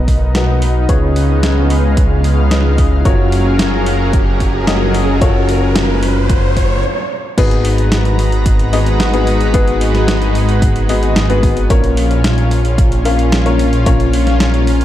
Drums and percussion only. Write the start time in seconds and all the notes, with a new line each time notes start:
0.08 kick, open hi-hat
0.35 snare, closed hi-hat
0.62 open hi-hat
0.89 kick, closed hi-hat
1.16 open hi-hat
1.43 snare, closed hi-hat
1.70 open hi-hat
1.97 kick, closed hi-hat
2.24 open hi-hat
2.51 snare, closed hi-hat
2.78 kick, open hi-hat
3.05 kick, closed hi-hat
3.32 open hi-hat
3.59 snare, closed hi-hat
3.86 open hi-hat
4.13 kick, closed hi-hat
4.40 kick, open hi-hat
4.67 snare, closed hi-hat
4.94 open hi-hat
5.21 kick, closed hi-hat
5.49 open hi-hat
5.76 snare, closed hi-hat
6.03 open hi-hat
6.29 kick, closed hi-hat
6.57 kick, open hi-hat
7.38 kick, closed hi-hat, crash
7.51 closed hi-hat
7.65 open hi-hat
7.78 closed hi-hat
7.92 snare, closed hi-hat
8.05 closed hi-hat
8.19 open hi-hat
8.32 closed hi-hat
8.46 kick, closed hi-hat
8.59 closed hi-hat
8.73 open hi-hat
8.86 closed hi-hat
9.00 snare, closed hi-hat
9.14 closed hi-hat
9.27 open hi-hat
9.41 closed hi-hat
9.54 kick, closed hi-hat
9.68 closed hi-hat
9.81 open hi-hat
9.95 snare, closed hi-hat
10.08 snare, closed hi-hat
10.22 closed hi-hat
10.35 open hi-hat
10.49 closed hi-hat
10.62 kick, closed hi-hat
10.76 closed hi-hat
10.89 open hi-hat
11.03 closed hi-hat
11.16 snare, closed hi-hat
11.30 closed hi-hat
11.43 kick, open hi-hat
11.57 closed hi-hat
11.70 kick, closed hi-hat
11.84 closed hi-hat
11.97 open hi-hat
12.11 closed hi-hat
12.24 snare, closed hi-hat
12.38 closed hi-hat
12.51 open hi-hat
12.65 closed hi-hat
12.78 kick, closed hi-hat
12.92 closed hi-hat
13.05 open hi-hat
13.19 closed hi-hat
13.32 snare, closed hi-hat
13.46 closed hi-hat
13.59 open hi-hat
13.73 closed hi-hat
13.86 kick, closed hi-hat
14.00 closed hi-hat
14.13 open hi-hat
14.27 snare, closed hi-hat
14.40 snare, closed hi-hat
14.54 closed hi-hat
14.67 open hi-hat
14.81 closed hi-hat